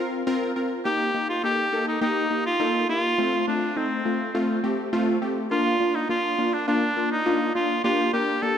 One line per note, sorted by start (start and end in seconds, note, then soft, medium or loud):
0.00 0.23 C4 medium
0.00 0.23 F4 medium
0.00 0.23 A#4 loud
0.00 0.27 F5 loud
0.27 0.52 C4 loud
0.27 0.52 F4 loud
0.27 0.52 A#4 loud
0.56 0.81 C4 medium
0.56 0.81 F4 medium
0.56 0.81 A#4 loud
0.85 1.10 A#3 loud
0.85 1.10 D#4 medium
0.85 1.10 G4 loud
0.85 1.26 G4 loud
1.14 1.39 A#3 medium
1.14 1.39 D#4 medium
1.14 1.39 G4 medium
1.29 1.43 F4 medium
1.43 1.68 A#3 medium
1.43 1.68 D#4 medium
1.43 1.84 G4 loud
1.43 1.68 A4 medium
1.72 1.97 A#3 medium
1.72 1.97 D#4 medium
1.72 1.97 A4 medium
1.88 2.01 D#4 medium
2.01 2.26 A#3 loud
2.01 2.26 D#4 medium
2.01 2.43 D#4 loud
2.01 2.26 G4 loud
2.31 2.56 A#3 medium
2.31 2.56 D#4 medium
2.31 2.56 G4 medium
2.46 2.86 F4 loud
2.60 2.85 A#3 loud
2.60 2.85 D#4 medium
2.60 2.85 A4 loud
2.89 3.14 A#3 medium
2.89 3.14 D#4 medium
2.89 3.43 F4 loud
2.89 3.14 G4 medium
3.18 3.43 A3 loud
3.18 3.43 C4 medium
3.18 3.43 F4 loud
3.47 3.72 A3 medium
3.47 3.72 C4 medium
3.47 3.78 D4 medium
3.47 3.72 F4 medium
3.76 4.01 A3 medium
3.76 4.01 C4 medium
3.76 4.35 C4 medium
3.76 4.01 D#4 medium
4.05 4.30 A3 medium
4.05 4.30 C4 medium
4.05 4.30 F4 medium
4.35 4.59 A3 loud
4.35 4.60 C4 medium
4.35 4.59 F4 loud
4.64 4.89 A3 medium
4.64 4.89 C4 medium
4.64 4.89 G4 loud
4.93 5.18 A3 loud
4.93 5.18 C4 loud
4.93 5.18 F4 loud
5.22 5.47 A3 medium
5.22 5.47 C4 medium
5.22 5.47 G4 loud
5.51 5.76 A#3 loud
5.51 5.76 D4 medium
5.51 5.76 F4 loud
5.51 5.96 F4 loud
5.80 6.05 A#3 medium
5.80 6.05 D4 medium
5.80 6.05 F4 medium
5.95 6.09 D#4 medium
6.09 6.34 A#3 medium
6.09 6.34 D4 medium
6.09 6.34 F4 medium
6.09 6.55 F4 loud
6.38 6.63 A#3 medium
6.38 6.63 D4 medium
6.38 6.63 F4 medium
6.53 6.67 D4 medium
6.68 6.93 A#3 loud
6.68 7.08 D4 loud
6.68 6.93 D4 medium
6.68 6.93 F4 loud
6.97 7.22 A#3 medium
6.97 7.22 D4 medium
6.97 7.22 F4 medium
7.11 7.52 D#4 loud
7.26 7.51 A#3 loud
7.26 7.51 D4 medium
7.26 7.51 F4 loud
7.55 7.80 A#3 medium
7.55 7.80 D4 medium
7.55 7.80 F4 medium
7.55 7.82 F4 loud
7.84 8.09 A#3 loud
7.84 8.09 D4 medium
7.84 8.11 F4 loud
7.84 8.09 G4 loud
8.13 8.38 A#3 medium
8.13 8.38 D4 medium
8.13 8.44 G4 loud
8.13 8.38 A#4 medium
8.42 8.58 A#3 medium
8.42 8.58 D4 medium
8.42 8.58 G4 medium
8.42 8.58 A4 loud